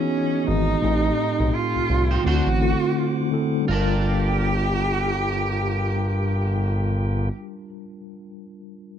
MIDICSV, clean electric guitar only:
0, 0, Header, 1, 2, 480
1, 0, Start_track
1, 0, Tempo, 714286
1, 543, Time_signature, 4, 2, 24, 8
1, 6041, End_track
2, 0, Start_track
2, 0, Title_t, "Clean electric guitar"
2, 0, Program_c, 0, 27
2, 1416, Note_on_c, 0, 72, 62
2, 1418, Note_on_c, 0, 67, 64
2, 1422, Note_on_c, 0, 63, 57
2, 1499, Note_off_c, 0, 72, 0
2, 1500, Note_off_c, 0, 67, 0
2, 1502, Note_off_c, 0, 63, 0
2, 1521, Note_on_c, 0, 62, 82
2, 1526, Note_on_c, 0, 66, 86
2, 1527, Note_on_c, 0, 72, 96
2, 1663, Note_off_c, 0, 62, 0
2, 1665, Note_off_c, 0, 66, 0
2, 1666, Note_off_c, 0, 72, 0
2, 2473, Note_on_c, 0, 65, 89
2, 2489, Note_on_c, 0, 70, 86
2, 2504, Note_on_c, 0, 74, 97
2, 5137, Note_off_c, 0, 65, 0
2, 5153, Note_off_c, 0, 70, 0
2, 5168, Note_off_c, 0, 74, 0
2, 6041, End_track
0, 0, End_of_file